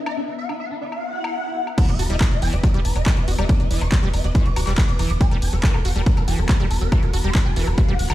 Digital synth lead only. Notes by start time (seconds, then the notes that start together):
0.06 E5
0.17 E4
0.28 E4
0.38 F#5
0.49 E4
0.60 F#5
0.71 E4
0.81 E4
0.92 F#5
1.78 B5
1.89 E5
1.99 B5
2.10 E5
2.21 E5
2.31 E5
2.42 A5
2.53 E5
2.63 E5
2.74 E5
2.85 B5
2.96 E5
3.06 B5
3.17 E5
3.28 E5
3.38 E5
3.49 E6
3.60 E5
3.71 E5
3.81 D6
3.92 E5
4.03 E6
4.13 E5
4.24 E5
5.21 A5
5.31 B4
5.42 A5
5.53 B4
5.63 B4
5.74 B4
5.85 G5
5.96 B4
6.06 B4
6.17 B4
6.28 A5
6.39 B4
6.49 B5
6.60 B4
6.71 B4
6.81 B4
6.92 D6
7.03 B4
7.13 B4
7.24 C6
7.35 B4
7.46 A5
7.56 B4
7.67 B4
7.78 F#5